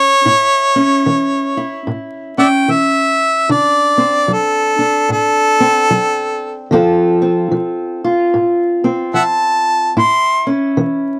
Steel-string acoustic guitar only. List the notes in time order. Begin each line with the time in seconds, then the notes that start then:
Already playing: E3 C#4 E4
0.25 A2 E4
0.76 C#4
1.06 E3
1.57 E4
1.87 A2
2.38 C#4
2.68 E3
3.49 D3 D4
3.98 C4
4.28 F#3
4.79 D4
5.09 A2
5.60 C4
5.90 F#3
6.71 D3 F3 C4 F4 A4
7.22 C4
7.51 F3
8.04 F4
8.34 A2
8.84 C4
9.14 F3
9.97 A2 E4
10.47 C#4
10.77 E3